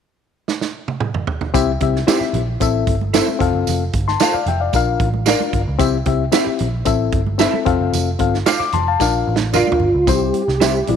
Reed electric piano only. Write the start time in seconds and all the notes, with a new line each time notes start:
1.54 C4 E4 G4 E5
1.81 C4 E4 G4 E5
2.07 C4 E4 G4 E5
2.60 C4 E4 A4 E5
3.14 C4 E4 A4 E5
3.39 C4 F4 A4 F5
4.08 A5 C6
4.21 F5 A5
4.34 D5 F5
4.48 E5 G5
4.60 D5 F5
4.75 D4 F4 A#4 F5
5.27 D4 F4 A#4 F5
5.79 C4 E4 G4 E5
6.06 C4 E4 G4 E5
6.32 C4 E4 G4 E5
6.85 C4 E4 A4 E5
7.38 C4 E4 A4 E5
7.65 C4 F4 A4 F5
8.19 C4 F4 A4 F5
8.46 D6 F6
8.60 D6
8.74 A5 C6
8.88 F5 A5
9.00 D4 F4 A#4 F5
9.53 D4 F4 A#4 F5
10.07 G3 C4 E4 C5
10.60 G3 C4 E4 C5
10.87 G3 C4 E4 D5